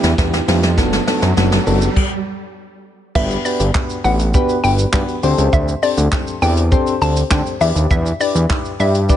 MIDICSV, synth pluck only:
0, 0, Header, 1, 2, 480
1, 0, Start_track
1, 0, Key_signature, 1, "major"
1, 0, Tempo, 594059
1, 629, Time_signature, 4, 2, 24, 8
1, 7408, End_track
2, 0, Start_track
2, 0, Title_t, "Synth pluck"
2, 0, Program_c, 0, 84
2, 2549, Note_on_c, 0, 76, 101
2, 2735, Note_off_c, 0, 76, 0
2, 2788, Note_on_c, 0, 74, 89
2, 3127, Note_off_c, 0, 74, 0
2, 3267, Note_on_c, 0, 78, 89
2, 3361, Note_off_c, 0, 78, 0
2, 3746, Note_on_c, 0, 79, 90
2, 3840, Note_off_c, 0, 79, 0
2, 4468, Note_on_c, 0, 76, 98
2, 4655, Note_off_c, 0, 76, 0
2, 4709, Note_on_c, 0, 74, 86
2, 5047, Note_off_c, 0, 74, 0
2, 5188, Note_on_c, 0, 79, 80
2, 5281, Note_off_c, 0, 79, 0
2, 5670, Note_on_c, 0, 81, 91
2, 5763, Note_off_c, 0, 81, 0
2, 5909, Note_on_c, 0, 79, 87
2, 6002, Note_off_c, 0, 79, 0
2, 6149, Note_on_c, 0, 76, 83
2, 6242, Note_off_c, 0, 76, 0
2, 6389, Note_on_c, 0, 76, 99
2, 6576, Note_off_c, 0, 76, 0
2, 6630, Note_on_c, 0, 74, 90
2, 6968, Note_off_c, 0, 74, 0
2, 7110, Note_on_c, 0, 76, 88
2, 7203, Note_off_c, 0, 76, 0
2, 7408, End_track
0, 0, End_of_file